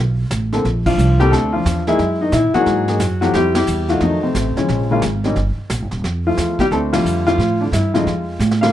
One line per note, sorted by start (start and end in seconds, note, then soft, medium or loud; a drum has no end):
0.00 0.29 B1 medium
0.31 0.63 A1 medium
0.31 snare medium
0.31 hi-hat pedal medium
0.52 0.63 D3 medium
0.52 0.63 A#3 medium
0.52 0.63 C4 medium
0.52 0.64 A4 medium
0.52 snare soft
0.65 0.97 A#1 medium
0.65 brush sweep soft
0.65 snare soft
0.86 1.18 F3 medium
0.86 1.18 D4 medium
0.86 1.21 F4 medium
0.86 kick medium
0.86 crash medium
0.98 1.31 C2 medium
0.98 hi-hat pedal medium
1.19 1.30 D3 medium
1.19 1.32 G3 medium
1.19 1.31 A#3 medium
1.19 1.31 C4 medium
1.19 1.32 G4 loud
1.19 1.30 A4 medium
1.19 snare soft
1.32 1.64 D2 medium
1.32 1.52 A3 medium
1.32 1.52 C4 medium
1.32 1.52 D4 medium
1.32 1.54 A4 loud
1.32 brush sweep soft
1.32 snare soft
1.53 1.85 F3 medium
1.53 1.85 D4 medium
1.53 1.88 F4 medium
1.65 1.98 E2 medium
1.65 snare medium
1.65 hi-hat pedal medium
1.87 1.98 E3 medium
1.87 2.19 G#3 medium
1.87 1.98 A#3 medium
1.87 1.98 D#4 medium
1.87 2.19 E4 loud
1.87 1.98 G#4 medium
1.87 snare soft
1.99 2.32 F#2 medium
1.99 brush sweep soft
1.99 snare soft
2.21 2.33 D#3 medium
2.21 2.33 D#4 medium
2.32 2.53 A#2 medium
2.32 2.52 E3 medium
2.32 2.53 E4 loud
2.32 snare medium
2.32 hi-hat pedal medium
2.54 2.86 E3 medium
2.54 3.18 F#3 medium
2.54 2.86 A#3 medium
2.54 2.86 D#4 medium
2.54 3.18 F#4 loud
2.54 2.86 G#4 medium
2.54 muted upright bass stroke soft
2.54 snare soft
2.66 2.99 G#2 medium
2.66 brush sweep soft
2.66 snare soft
2.88 2.99 E3 medium
2.88 2.99 A#3 medium
2.88 2.99 D#4 medium
2.88 3.00 G#4 medium
2.88 snare soft
3.00 3.33 F#2 medium
3.00 snare medium
3.00 hi-hat pedal medium
3.21 3.33 F3 medium
3.21 3.33 F#3 medium
3.21 3.33 A3 medium
3.21 3.33 E4 medium
3.21 3.33 F#4 medium
3.21 3.33 G4 medium
3.21 snare soft
3.34 3.67 F2 medium
3.34 3.54 G3 medium
3.34 3.55 C4 medium
3.34 3.55 E4 medium
3.34 3.54 G4 loud
3.34 brush sweep soft
3.34 snare soft
3.55 3.87 G3 medium
3.55 3.87 E4 medium
3.55 3.90 G4 medium
3.55 snare medium
3.55 ride medium
3.67 4.00 E2 medium
3.67 hi-hat pedal medium
3.89 4.00 F3 medium
3.89 4.01 A3 medium
3.89 4.00 D#4 medium
3.89 4.02 F4 medium
3.89 4.01 F#4 medium
3.89 snare soft
4.01 4.34 F2 medium
4.01 4.23 D#3 medium
4.01 4.22 F#3 medium
4.01 4.22 A3 medium
4.01 4.24 D#4 medium
4.01 brush sweep soft
4.01 snare soft
4.23 4.55 C3 medium
4.23 4.55 A3 medium
4.23 4.54 C4 medium
4.35 4.55 A1 medium
4.35 snare medium
4.35 hi-hat pedal medium
4.57 4.89 C#3 medium
4.57 5.00 F3 medium
4.57 4.90 G#3 medium
4.57 5.00 C#4 medium
4.57 muted upright bass stroke soft
4.57 snare soft
4.68 5.02 A#1 medium
4.68 brush sweep soft
4.68 snare soft
4.91 5.02 C#3 medium
4.91 5.02 G#3 medium
4.91 5.02 A#3 medium
4.91 5.02 F4 medium
5.02 5.35 G#1 medium
5.02 snare medium
5.02 hi-hat pedal medium
5.24 5.35 D#3 medium
5.24 5.36 G3 medium
5.24 5.36 C#4 medium
5.24 5.36 D#4 medium
5.24 snare soft
5.36 5.56 G1 medium
5.36 brush sweep soft
5.36 snare soft
5.58 muted upright bass stroke soft
5.70 5.82 A#1 medium
5.70 snare medium
5.70 hi-hat pedal medium
5.82 5.92 G1 medium
5.91 6.03 D#1 medium
5.91 snare soft
6.04 6.37 F2 medium
6.04 brush sweep soft
6.04 snare soft
6.27 6.57 F3 medium
6.27 6.58 A3 medium
6.27 6.61 F4 medium
6.37 6.70 E2 medium
6.37 snare medium
6.37 hi-hat pedal soft
6.59 6.66 G3 medium
6.59 6.65 G4 medium
6.59 kick medium
6.59 snare soft
6.71 7.04 D2 medium
6.71 6.92 A3 medium
6.71 6.92 C4 medium
6.71 6.92 D4 medium
6.71 6.77 A4 loud
6.71 brush sweep soft
6.71 snare soft
6.93 7.25 D3 medium
6.93 7.25 F3 medium
6.93 7.25 G3 medium
6.93 7.25 A3 medium
6.93 7.25 F4 medium
6.93 snare medium
6.93 ride medium
7.05 7.37 F2 medium
7.05 hi-hat pedal medium
7.27 7.38 D3 medium
7.27 7.59 F3 medium
7.27 7.38 G3 medium
7.27 7.38 A3 medium
7.27 7.61 F4 loud
7.27 snare soft
7.38 7.71 A2 medium
7.38 brush sweep soft
7.38 snare soft
7.61 7.68 D3 medium
7.61 7.66 D4 medium
7.72 8.05 G2 medium
7.72 7.93 E3 medium
7.72 7.95 E4 medium
7.72 snare medium
7.72 hi-hat pedal medium
7.94 8.05 C#3 medium
7.94 8.05 F3 medium
7.94 8.59 G#3 medium
7.94 8.05 A3 medium
7.94 8.06 D#4 medium
7.94 8.57 F4 medium
7.94 snare soft
8.06 8.39 F2 medium
8.06 brush sweep soft
8.06 snare soft
8.39 8.72 A2 medium
8.39 snare soft
8.39 hi-hat pedal medium
8.51 snare medium
8.61 8.72 D3 medium
8.61 8.72 G3 medium
8.61 8.72 A#3 medium
8.61 8.72 F4 medium
8.61 8.72 F5 medium
8.61 snare medium